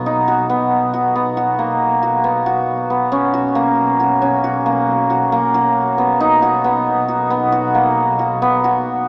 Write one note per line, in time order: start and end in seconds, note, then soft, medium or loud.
0.00 3.12 B1 medium
0.00 0.49 B3 medium
0.00 0.27 F#4 medium
0.06 3.67 D#4 medium
0.28 0.93 F#4 medium
0.50 1.15 B3 medium
0.94 1.36 F#4 medium
1.15 1.65 B3 medium
1.37 2.02 F#4 medium
1.59 2.30 A#3 medium
2.03 2.46 F#4 medium
2.24 2.90 B3 medium
2.46 3.33 F#4 medium
2.90 3.61 B3 medium
3.12 6.20 B1 medium
3.12 4.21 C#4 medium
3.12 3.60 C#6 medium
3.34 3.99 F#4 medium
3.55 4.65 A#3 medium
4.00 4.43 F#4 medium
4.22 8.08 C#4 medium
4.44 5.09 F#4 medium
4.66 5.32 A#3 medium
5.10 5.54 F#4 medium
5.32 6.04 A#3 medium
5.54 6.42 F#4 medium
5.98 6.64 B3 medium
6.20 9.08 B1 medium
6.20 9.08 D#4 medium
6.42 7.08 F#4 medium
6.64 7.30 B3 medium
7.08 7.52 F#4 medium
7.30 7.81 B3 medium
7.52 8.19 F#4 medium
7.75 8.48 A#3 medium
8.19 8.64 F#4 medium
8.42 9.08 B3 medium
8.64 9.08 F#4 medium